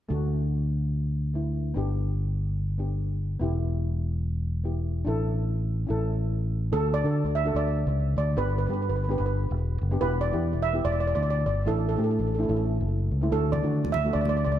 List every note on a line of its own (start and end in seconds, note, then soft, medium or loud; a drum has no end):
0.09 1.73 D2 medium
0.09 1.31 A3 medium
0.09 1.32 D4 medium
0.09 1.33 F#4 medium
1.34 1.75 A3 soft
1.34 1.75 D4 soft
1.34 1.76 E4 soft
1.74 3.38 G1 medium
1.74 2.76 B3 medium
1.74 2.77 D4 medium
1.74 2.78 G4 medium
2.78 3.38 B3 soft
2.78 3.41 D4 soft
2.78 3.42 G4 soft
3.39 5.03 E1 medium
3.39 4.62 B3 medium
3.39 4.63 E4 medium
3.39 4.64 G4 medium
4.64 5.06 B3 soft
4.64 5.05 E4 soft
4.64 5.07 G4 soft
5.05 5.88 A1 medium
5.05 5.87 D4 medium
5.05 5.88 E4 medium
5.05 5.88 A4 medium
5.87 6.71 A1 medium
5.87 6.69 C#4 medium
5.87 6.70 E4 medium
5.87 6.71 A4 medium
6.72 7.01 D2 medium
6.72 6.91 D4 medium
6.72 6.91 F#4 medium
6.72 6.92 A4 medium
6.94 7.36 D5 medium
7.04 7.23 D3 medium
7.04 7.28 D4 medium
7.04 7.29 F#4 soft
7.04 7.29 A4 medium
7.24 7.52 D2 medium
7.35 7.56 E5 medium
7.45 7.94 D4 medium
7.45 7.94 F#4 medium
7.45 7.95 A4 medium
7.55 7.83 D2 medium
7.55 8.17 D5 medium
7.87 8.14 C#2 medium
8.17 8.35 D2 medium
8.17 8.36 D5 medium
8.37 8.66 G1 loud
8.37 8.56 B3 medium
8.37 8.56 D4 medium
8.37 8.56 G4 medium
8.37 8.57 B4 medium
8.58 8.65 B4 medium
8.67 8.88 G2 medium
8.67 8.93 B3 medium
8.67 8.94 D4 medium
8.67 8.94 G4 medium
8.67 8.72 B4 soft
8.73 8.80 B4 soft
8.82 8.88 B4 soft
8.89 9.17 G1 medium
8.89 8.95 B4 soft
8.96 9.03 B4 soft
9.04 9.10 B4 soft
9.09 9.58 B3 medium
9.09 9.59 D4 medium
9.09 9.59 G4 medium
9.09 9.17 B4 soft
9.18 9.48 G1 medium
9.18 9.25 B4 medium
9.26 9.33 B4 soft
9.51 9.79 E1 medium
9.81 10.00 F#1 medium
9.91 9.97 B3 medium
9.91 9.98 D4 medium
9.91 9.98 G4 medium
10.01 10.30 E1 medium
10.01 10.20 B3 medium
10.01 10.20 E4 medium
10.01 10.21 G4 medium
10.01 10.23 B4 medium
10.21 10.64 D5 medium
10.32 10.52 E2 medium
10.32 10.57 B3 medium
10.32 10.58 E4 medium
10.32 10.58 G4 medium
10.54 10.82 E1 medium
10.62 10.82 E5 medium
10.73 11.23 B3 medium
10.73 11.23 E4 medium
10.73 11.24 G4 medium
10.84 11.13 E1 medium
10.84 10.91 D5 medium
10.92 10.99 D5 medium
11.00 11.06 D5 medium
11.07 11.14 D5 medium
11.15 11.43 D2 medium
11.15 11.21 D5 medium
11.23 11.29 D5 medium
11.30 11.38 D5 medium
11.46 11.65 G1 medium
11.46 11.67 D5 medium
11.66 11.95 A1 loud
11.66 11.85 A3 medium
11.66 11.85 D4 medium
11.66 11.86 E4 medium
11.66 11.86 A4 medium
11.89 11.95 A4 medium
11.96 12.17 A2 medium
11.96 12.22 A3 medium
11.96 12.22 D4 medium
11.96 12.23 G4 medium
11.96 12.03 A4 soft
12.04 12.10 A4 medium
12.11 12.18 A4 soft
12.19 12.47 A1 medium
12.19 12.25 A4 soft
12.27 12.33 A4 soft
12.35 12.47 A3 medium
12.35 12.41 A4 soft
12.39 12.49 D4 medium
12.39 12.49 E4 medium
12.43 12.49 A4 soft
12.48 12.78 A1 medium
12.48 13.07 A3 medium
12.48 13.07 C#4 medium
12.48 13.08 E4 medium
12.48 12.55 A4 soft
12.56 12.63 A4 soft
12.81 13.08 F#1 medium
13.11 13.30 C#2 medium
13.21 13.28 A3 medium
13.21 13.28 C#4 medium
13.21 13.28 E4 medium
13.31 13.60 D2 medium
13.31 13.50 A3 medium
13.31 13.50 D4 medium
13.31 13.51 F#4 medium
13.31 13.41 A4 medium
13.52 13.95 D5 medium
13.52 low conga medium
13.62 13.82 D3 medium
13.62 13.87 A3 medium
13.62 13.88 D4 medium
13.62 13.88 F#4 medium
13.84 14.12 D2 medium
13.84 high conga medium
13.92 14.14 E5 medium
13.92 low conga medium
14.05 14.54 A3 medium
14.05 14.54 D4 medium
14.05 14.54 F#4 medium
14.13 14.43 D2 medium
14.13 14.20 D5 medium
14.21 14.28 D5 medium
14.25 14.36 D5 medium
14.25 high conga medium
14.37 14.43 D5 medium
14.45 14.59 C#2 medium
14.45 14.51 D5 medium
14.52 14.58 D5 medium